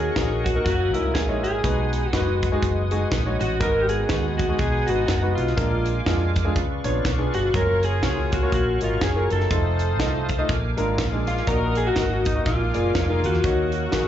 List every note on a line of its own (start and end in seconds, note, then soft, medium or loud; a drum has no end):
0.00 0.41 D#3 medium
0.00 0.62 C#4 medium
0.00 0.45 F#4 medium
0.00 0.44 G#4 medium
0.00 0.46 G#4 loud
0.00 1.62 A#4 medium
0.00 0.65 D#5 medium
0.00 0.65 F#5 medium
0.00 0.65 C#6 medium
0.16 0.58 A#1 medium
0.16 0.48 A#3 medium
0.16 0.48 D#4 medium
0.16 0.48 F#4 soft
0.16 0.48 C#5 medium
0.16 kick medium
0.16 snare loud
0.16 closed hi-hat medium
0.44 0.63 F#4 medium
0.44 0.65 F#4 medium
0.44 kick medium
0.44 closed hi-hat medium
0.55 0.65 A#3 medium
0.55 0.65 D#4 medium
0.55 0.65 F#4 medium
0.55 0.65 A#4 medium
0.65 0.95 F#1 loud
0.65 1.60 A#3 medium
0.65 1.60 C#4 medium
0.65 0.95 F#4 medium
0.65 0.93 F#4 medium
0.65 1.63 E5 medium
0.65 3.58 G#5 medium
0.65 3.58 D#6 medium
0.65 kick medium
0.65 snare soft
0.65 closed hi-hat medium
0.94 1.15 C#2 medium
0.94 1.18 G#3 medium
0.94 1.18 D#4 medium
0.94 1.15 E4 medium
0.94 1.18 E4 medium
0.94 1.13 E4 medium
0.94 1.18 A#4 medium
0.94 closed hi-hat medium
1.14 1.44 A#1 medium
1.14 1.42 G#4 medium
1.14 1.43 G#4 medium
1.14 kick medium
1.14 snare loud
1.14 closed hi-hat medium
1.29 1.56 G#3 medium
1.29 1.56 D#4 medium
1.29 1.56 E4 medium
1.29 1.56 C#5 medium
1.44 1.61 G#1 medium
1.44 2.39 D#4 medium
1.44 2.11 G#4 medium
1.44 2.39 G#4 medium
1.44 closed hi-hat medium
1.63 2.06 B1 medium
1.63 2.38 B2 medium
1.63 2.02 G#3 medium
1.63 2.02 D#4 medium
1.63 2.02 F#4 medium
1.63 2.02 B4 medium
1.63 5.54 B4 medium
1.63 5.54 F#5 medium
1.63 kick loud
1.63 closed hi-hat medium
1.93 closed hi-hat medium
2.11 2.55 F#1 medium
2.11 2.44 G#3 medium
2.11 2.44 D#4 medium
2.11 2.38 F#4 medium
2.11 2.44 F#4 medium
2.11 2.44 B4 medium
2.11 kick medium
2.11 snare loud
2.11 closed hi-hat medium
2.43 kick medium
2.43 closed hi-hat medium
2.52 2.80 G#3 medium
2.52 2.80 D#4 medium
2.52 2.80 F#4 medium
2.52 2.80 G#4 loud
2.63 3.04 F#1 medium
2.63 kick medium
2.63 closed hi-hat medium
2.91 3.15 G#3 medium
2.91 3.15 D#4 medium
2.91 3.15 F#4 medium
2.91 3.15 G#4 medium
2.91 closed hi-hat medium
3.12 3.36 A#1 medium
3.12 kick medium
3.12 snare loud
3.12 closed hi-hat medium
3.26 3.53 G#3 medium
3.26 3.53 D#4 medium
3.26 3.53 F#4 medium
3.26 3.53 C#5 medium
3.41 3.58 A1 medium
3.41 3.61 F#4 medium
3.41 3.59 F#4 medium
3.41 closed hi-hat medium
3.60 4.03 G#1 loud
3.60 4.35 G#2 medium
3.60 3.99 G#3 medium
3.60 3.99 D#4 medium
3.60 3.89 D#4 medium
3.60 3.99 F#4 medium
3.60 4.38 F#4 medium
3.60 3.82 A#4 medium
3.60 3.88 A#4 medium
3.60 3.99 B4 medium
3.60 5.55 G#5 medium
3.60 5.57 D#6 medium
3.60 kick loud
3.60 closed hi-hat medium
3.82 3.89 G4 medium
3.89 4.59 B3 medium
3.89 4.59 D#4 medium
3.89 4.37 G#4 loud
3.89 4.39 G#4 loud
3.89 closed hi-hat medium
4.09 4.52 D#2 medium
4.09 4.41 G#3 medium
4.09 4.41 D#4 medium
4.09 4.41 F#4 medium
4.09 4.41 B4 medium
4.09 kick medium
4.09 snare loud
4.09 closed hi-hat medium
4.38 4.57 F#4 medium
4.38 4.58 F#4 medium
4.38 kick medium
4.38 closed hi-hat medium
4.49 4.77 G#3 medium
4.49 4.77 D#4 medium
4.49 4.77 F#4 medium
4.49 4.77 G#4 medium
4.59 4.84 B1 medium
4.59 5.54 B3 medium
4.59 5.54 D#4 medium
4.59 4.89 G#4 medium
4.59 kick medium
4.59 snare soft
4.59 closed hi-hat medium
4.87 5.06 G#1 medium
4.87 5.11 G#3 medium
4.87 5.11 D#4 medium
4.87 5.05 F#4 medium
4.87 5.11 F#4 medium
4.87 5.08 F#4 medium
4.87 5.11 B4 medium
4.87 closed hi-hat medium
5.06 5.33 F#1 medium
5.06 5.35 F#4 medium
5.06 5.36 F#4 medium
5.06 kick medium
5.06 snare loud
5.06 closed hi-hat medium
5.22 5.49 G#3 medium
5.22 5.49 D#4 medium
5.22 5.49 F#4 medium
5.22 5.49 B4 medium
5.35 5.55 B1 medium
5.35 6.32 G#3 medium
5.35 6.32 D4 medium
5.35 6.31 F4 medium
5.35 6.36 F4 medium
5.35 closed hi-hat medium
5.47 snare soft
5.56 5.99 A#1 loud
5.56 6.32 A#2 medium
5.56 5.96 G#3 medium
5.56 5.96 D4 medium
5.56 5.96 F4 medium
5.56 6.55 A#4 medium
5.56 5.96 A#4 medium
5.56 6.54 F5 medium
5.56 6.54 G#5 medium
5.56 6.55 D6 medium
5.56 kick loud
5.56 closed hi-hat medium
5.86 closed hi-hat medium
6.06 6.56 F2 medium
6.06 6.38 G#3 medium
6.06 6.38 D4 medium
6.06 6.38 F4 medium
6.06 6.38 G#4 medium
6.06 kick medium
6.06 snare loud
6.06 closed hi-hat medium
6.36 kick medium
6.36 closed hi-hat medium
6.45 6.55 G#3 medium
6.45 6.55 D4 medium
6.45 6.55 F4 medium
6.45 6.55 G#4 medium
6.54 6.81 C#2 medium
6.54 7.29 C#3 medium
6.54 7.53 B4 medium
6.54 7.53 D5 soft
6.54 10.45 F5 medium
6.54 9.48 C#6 medium
6.54 kick medium
6.54 closed hi-hat medium
6.84 7.02 A#1 medium
6.84 7.08 B3 medium
6.84 7.08 D4 medium
6.84 7.08 F4 medium
6.84 7.08 C#5 medium
6.84 closed hi-hat medium
7.05 7.30 B1 medium
7.05 kick medium
7.05 snare loud
7.05 closed hi-hat medium
7.19 7.46 B3 medium
7.19 7.46 D4 medium
7.19 7.46 F4 medium
7.19 7.46 G#4 medium
7.34 7.52 G1 medium
7.34 7.55 F#4 medium
7.34 7.53 F#4 medium
7.34 closed hi-hat medium
7.54 8.05 F#1 medium
7.54 7.93 F#3 medium
7.54 7.61 G#3 medium
7.54 7.83 C#4 medium
7.54 7.93 F4 medium
7.54 7.83 F4 medium
7.54 7.84 A#4 medium
7.54 9.49 A#4 medium
7.54 7.85 A#4 medium
7.54 7.93 C#5 medium
7.54 9.49 C#5 medium
7.54 kick loud
7.54 closed hi-hat medium
7.60 7.96 A#3 medium
7.83 8.53 C#4 medium
7.83 8.78 F4 medium
7.83 8.33 G#4 loud
7.83 8.34 G#4 medium
7.83 closed hi-hat medium
8.03 8.45 C#2 medium
8.03 8.34 A#3 medium
8.03 8.34 F4 medium
8.03 8.34 F#4 medium
8.03 8.34 C#5 medium
8.03 kick medium
8.03 snare loud
8.03 closed hi-hat medium
8.32 8.52 F#4 medium
8.32 8.53 F#4 medium
8.32 kick medium
8.32 closed hi-hat medium
8.42 8.70 A#3 medium
8.42 8.70 F4 medium
8.42 8.70 F#4 medium
8.42 8.70 C#5 medium
8.52 8.77 A#1 medium
8.52 9.47 A#3 medium
8.52 9.48 C#4 medium
8.52 8.80 F#4 medium
8.52 8.81 F#4 medium
8.52 kick medium
8.52 closed hi-hat medium
8.81 8.99 G#1 medium
8.81 9.05 A#3 medium
8.81 9.05 F4 medium
8.81 9.02 F4 medium
8.81 9.04 F4 medium
8.81 9.05 F#4 medium
8.81 9.05 D#5 medium
8.81 closed hi-hat medium
9.01 9.26 F#1 medium
9.01 9.31 G#4 medium
9.01 9.29 G#4 medium
9.01 kick medium
9.01 snare loud
9.01 closed hi-hat medium
9.16 9.43 A#3 medium
9.16 9.43 F4 medium
9.16 9.43 F#4 medium
9.16 9.43 A#4 medium
9.30 9.48 F#1 medium
9.30 10.25 C4 medium
9.30 10.26 D#4 medium
9.30 10.26 A4 medium
9.30 closed hi-hat medium
9.40 snare soft
9.50 10.00 F1 medium
9.50 9.90 A3 medium
9.50 9.90 D#4 medium
9.50 9.89 F4 medium
9.50 9.89 C5 medium
9.50 10.48 C5 medium
9.50 10.48 A5 medium
9.50 10.48 D#6 medium
9.50 kick loud
9.50 closed hi-hat medium
9.79 closed hi-hat medium
10.00 10.42 C2 medium
10.00 10.31 A3 medium
10.00 10.31 D#4 medium
10.00 10.31 F4 medium
10.00 10.31 D#5 medium
10.00 kick medium
10.00 snare loud
10.00 closed hi-hat medium
10.29 kick medium
10.29 closed hi-hat medium
10.39 10.49 A3 medium
10.39 10.49 D#4 medium
10.39 10.49 F4 medium
10.39 10.49 D#5 medium
10.48 10.74 A#1 medium
10.48 11.23 A#2 medium
10.48 13.42 A#4 medium
10.48 11.47 F5 medium
10.48 11.47 G#5 medium
10.48 11.47 D6 medium
10.48 kick loud
10.48 snare soft
10.48 closed hi-hat medium
10.77 10.95 G#1 medium
10.77 11.01 G#3 medium
10.77 11.01 D4 medium
10.77 11.01 F4 medium
10.77 11.01 A#4 medium
10.77 closed hi-hat medium
10.98 11.40 A#1 medium
10.98 kick medium
10.98 snare loud
10.98 closed hi-hat medium
11.12 11.39 G#3 medium
11.12 11.40 D4 medium
11.12 11.39 F4 medium
11.12 11.39 G#4 medium
11.27 11.48 F4 medium
11.27 11.47 F4 medium
11.27 closed hi-hat medium
11.37 snare soft
11.47 11.89 A#1 loud
11.47 12.22 A#2 medium
11.47 11.86 A#3 medium
11.47 11.85 D#4 medium
11.47 11.86 D#4 medium
11.47 11.86 F#4 medium
11.47 11.77 A#4 medium
11.47 11.78 A#4 loud
11.47 11.54 D5 medium
11.47 12.46 D#5 medium
11.47 12.46 F#5 medium
11.47 12.46 D#6 medium
11.47 kick loud
11.47 closed hi-hat medium
11.53 11.89 D#5 medium
11.75 11.87 G#4 medium
11.75 11.87 G#4 loud
11.75 closed hi-hat medium
11.87 12.42 A#3 medium
11.87 12.25 D#4 medium
11.87 12.27 F#4 medium
11.87 12.23 F#4 medium
11.96 12.38 G#1 medium
11.96 12.28 A#3 medium
11.96 12.28 D#4 medium
11.96 12.28 F#4 medium
11.96 12.28 D#5 medium
11.96 kick medium
11.96 snare medium
11.96 closed hi-hat medium
12.25 12.45 D#4 medium
12.25 12.46 D#4 medium
12.25 kick medium
12.25 closed hi-hat medium
12.35 12.46 A#3 medium
12.35 12.46 D#4 medium
12.35 12.46 F#4 medium
12.35 12.46 D#5 medium
12.46 12.71 A#1 medium
12.46 13.20 A#2 medium
12.46 13.40 G#3 medium
12.46 13.40 D4 medium
12.46 13.44 F4 medium
12.46 13.06 F4 medium
12.46 13.44 F5 medium
12.46 13.44 G#5 medium
12.46 13.44 D6 medium
12.46 kick medium
12.46 snare soft
12.46 closed hi-hat medium
12.74 12.92 F#1 medium
12.74 12.98 A#3 medium
12.74 12.98 F4 medium
12.74 12.98 G#4 medium
12.74 12.98 D5 medium
12.74 closed hi-hat medium
12.95 13.26 F1 medium
12.95 kick medium
12.95 snare loud
12.95 closed hi-hat medium
13.06 13.36 A#3 medium
13.06 13.25 D#4 medium
13.06 13.36 F4 medium
13.06 13.36 G#4 medium
13.06 13.36 A#4 medium
13.24 13.41 E2 medium
13.24 14.08 F#4 medium
13.24 closed hi-hat medium
13.34 snare soft
13.44 14.08 D#3 medium
13.44 14.08 A#3 medium
13.44 13.83 A#3 medium
13.44 14.08 C#4 medium
13.44 13.83 D#4 medium
13.44 14.08 F#4 medium
13.44 13.83 F#4 medium
13.44 14.08 A#4 medium
13.44 13.83 C#5 medium
13.44 14.08 D#5 medium
13.44 14.08 F#5 medium
13.44 14.08 C#6 medium
13.44 kick loud
13.44 closed hi-hat medium
13.72 closed hi-hat medium
13.92 14.08 A#1 medium
13.92 14.08 A#3 medium
13.92 14.08 D#4 medium
13.92 14.08 F#4 medium
13.92 14.08 G#4 medium
13.92 kick medium
13.92 snare medium
13.92 closed hi-hat medium